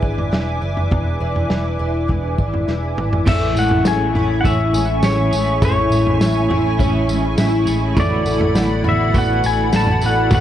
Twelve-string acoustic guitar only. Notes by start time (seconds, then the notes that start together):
Already playing: E2 G#3 E4
0.02 D4
0.32 E4
0.62 D4
0.91 E2
1.20 D4
1.50 E4
1.79 D4
2.08 G#3
2.38 D4
2.68 E4
2.97 D4
3.26 A2
3.56 G#3
3.86 C#4
4.16 E4
4.45 C#4
4.74 G#3
5.03 E4
5.33 G#3
5.62 A2
5.92 G#3
6.21 C#4
6.50 E4
6.79 C#4
7.09 G#3
7.38 E4
7.67 G#3
7.97 A2
8.26 A3
8.55 B3
8.84 F#4
9.14 B3
9.44 A3
9.72 F#4
10.03 A3
10.32 A2